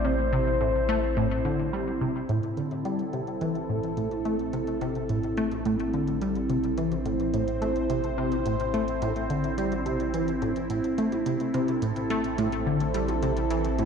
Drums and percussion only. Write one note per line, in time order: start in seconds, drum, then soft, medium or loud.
2.29 closed hi-hat medium
2.43 closed hi-hat soft
2.57 closed hi-hat medium
2.71 closed hi-hat soft
2.71 high tom soft
2.85 closed hi-hat medium
2.99 closed hi-hat soft
3.13 closed hi-hat medium
3.27 closed hi-hat soft
3.41 closed hi-hat medium
3.41 high tom soft
3.55 closed hi-hat soft
3.83 closed hi-hat soft
3.97 closed hi-hat medium
4.11 closed hi-hat soft
4.11 high tom soft
4.25 closed hi-hat medium
4.39 closed hi-hat soft
4.53 closed hi-hat medium
4.67 closed hi-hat soft
4.81 closed hi-hat medium
4.81 high tom soft
4.95 closed hi-hat soft
5.09 closed hi-hat medium
5.24 closed hi-hat soft
5.37 closed hi-hat medium
5.51 closed hi-hat soft
5.51 high tom soft
5.65 closed hi-hat medium
5.80 closed hi-hat soft
5.93 closed hi-hat soft
6.08 closed hi-hat soft
6.22 closed hi-hat medium
6.22 high tom soft
6.35 closed hi-hat soft
6.50 closed hi-hat medium
6.64 closed hi-hat soft
6.78 closed hi-hat medium
6.92 closed hi-hat soft
6.92 high tom soft
7.06 closed hi-hat medium
7.20 closed hi-hat soft
7.34 closed hi-hat medium
7.48 closed hi-hat soft
7.62 closed hi-hat medium
7.62 high tom soft
7.76 closed hi-hat soft
7.90 closed hi-hat medium
8.04 closed hi-hat soft
8.32 closed hi-hat soft
8.32 high tom soft
8.46 closed hi-hat medium
8.60 closed hi-hat soft
8.74 closed hi-hat medium
8.88 closed hi-hat soft
9.02 closed hi-hat medium
9.02 high tom soft
9.16 closed hi-hat soft
9.30 closed hi-hat medium
9.44 closed hi-hat soft
9.58 closed hi-hat medium
9.72 closed hi-hat soft
9.72 high tom soft
9.86 closed hi-hat medium
10.00 closed hi-hat soft
10.14 closed hi-hat medium
10.28 closed hi-hat soft
10.42 closed hi-hat soft
10.42 high tom soft
10.56 closed hi-hat soft
10.70 closed hi-hat medium
10.84 closed hi-hat soft
10.98 closed hi-hat medium
11.12 closed hi-hat soft
11.12 high tom soft
11.26 closed hi-hat medium
11.40 closed hi-hat soft
11.54 closed hi-hat medium
11.68 closed hi-hat soft
11.68 high tom soft
11.82 closed hi-hat medium
11.96 closed hi-hat soft
12.10 closed hi-hat medium
12.24 closed hi-hat soft
12.38 closed hi-hat medium
12.38 high tom soft
12.52 closed hi-hat soft
12.80 closed hi-hat soft
12.94 closed hi-hat medium
13.08 closed hi-hat soft
13.08 high tom soft
13.23 closed hi-hat medium
13.37 closed hi-hat soft
13.50 closed hi-hat medium
13.64 closed hi-hat soft
13.79 closed hi-hat medium
13.79 high tom soft